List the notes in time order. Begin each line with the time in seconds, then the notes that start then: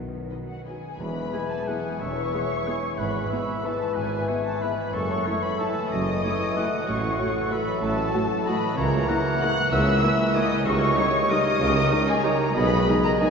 Already playing: B1 B2 D#3 F#3 B3 D#4 B4
0.14 B4
0.30 F#3 D#4 B4 D#5
0.47 F#3 F#4 F#5
0.66 F#3 B3 G#4 B4 D#5 G#5
0.83 D#4
0.98 E1 E2 E3 G#4 B4 B5
1.07 G#3
1.16 B4
1.24 G#4
1.32 G#3 B3 E4 G#4 E5 G#5
1.42 B5
1.48 A4 E5 A5
1.59 G#4
1.65 G#3 B3 E4 G#4 B4 F#5 G#5
1.76 E4
1.85 B2
1.93 G#3
1.99 E1 E2 C#5 E5 C#6
2.09 B2
2.16 B4
2.25 G#4
2.33 G#3 B3 E4 G#4 E5
2.41 B5
2.50 E5
2.58 G#4
2.66 G#3 B3 E4 G#4 B4 G#5
2.75 E4
2.83 B2
2.91 G#3
2.97 G#1 G#2 E3 B4 F#5 B5
3.06 B3
3.14 B4
3.23 E4
3.29 G#3 B3 E4 E5
3.39 B5
3.48 E5
3.56 B4
3.64 G#3 B3 E4 A4 A5
3.73 B3
3.81 G#3
3.89 B3
3.95 G#1 G#2 G#4 B4 G#5
4.12 B4
4.20 E4
4.28 G#3 B3 E4 C#5 E5
4.37 B5
4.44 A4 E5 A5
4.54 B4
4.62 G#3 B3 E4 B4 B5
4.70 B3
4.78 G#3
4.86 B3
4.93 F#1 F#2 E3 A4 C#5 C#6
5.02 A3
5.17 A4
5.25 A3 E4 C#5 E5
5.34 C#6
5.41 B4 E5 B5
5.50 A4
5.58 A3 E4 A4 C#5 E5 A5
5.67 E4
5.76 C#3
5.84 A3
5.91 F#1 F#2 D#5 D#6
6.00 C#3
6.08 C#5
6.16 A4
6.24 A3 E4 C#5 E5
6.32 C#6
6.40 E5
6.48 A4
6.56 A3 E4 C#5 F#5
6.64 E4
6.72 C#3
6.80 A3
6.87 A1 A2 F#3 A4 C#5 C#6
6.95 A3
7.02 C#5
7.10 A4
7.17 A3 F#4 F#5
7.27 C#6
7.35 F#5
7.43 A4
7.51 A3 F#4 B4 C#5 E5 B5
7.59 F#4
7.67 F#3
7.75 A3
7.82 A1 A2 A4 A5
7.90 F#3
7.97 C#5
8.06 A4
8.13 A3 F#4 F#5
8.22 C#6
8.30 F#5
8.38 A4
8.45 A3 F#4 B4 C#5 D#5 B5
8.54 F#4
8.62 F#3
8.70 A3
8.77 C#2 C#3 E3 A#4 C#5 A#5
8.85 A#3
8.92 C#5
9.00 A#4
9.08 A#3 E4 E5 F#5
9.16 C#6
9.25 E5
9.33 A#4
9.41 A#3 E4 C#5 F#5 F#6
9.50 E4
9.57 C#4
9.65 A#3
9.71 C#2 C#3 E3 A#4 E5 E6
9.79 C#4
9.87 C#5
9.94 A#4
10.02 A#3 E4 E5
10.11 C#6
10.20 E5
10.27 A#4
10.34 A#3 E4 C#5 D#5 D#6
10.43 E4
10.51 C#4
10.59 A#3
10.66 C#2 C#3 D#3 G4 A#4 C#5 C#6
10.74 G3
10.82 D#5
10.90 G4
10.97 G3 D#4 C#5 D#5
11.06 D#6
11.14 D#5
11.22 G4
11.29 D#3 G3 D#4 G4 A#4 D#5 D#6
11.38 D#4
11.46 C#4
11.53 G3
11.60 C#2 C#3 A#4
11.68 C#4
11.76 D#5
11.84 G4
11.91 G3 D#4
12.07 G#4 D#5 G#5
12.17 G4
12.22 D#3 G3 D#4 G4 A#4 C#5 D#5 A#5
12.26 D#4
12.33 D#4
12.40 C#4
12.48 G3
12.54 B1 B2 D#3 G#4 B4 D#5 B5
12.63 G#3
12.71 D#5
12.78 G#4
12.87 G#3 D#4 D#5
12.95 D#6
13.03 A#4 D#5 A#5
13.12 G#4
13.19 D#3 G#3 D#4 G#4 D#5 G#5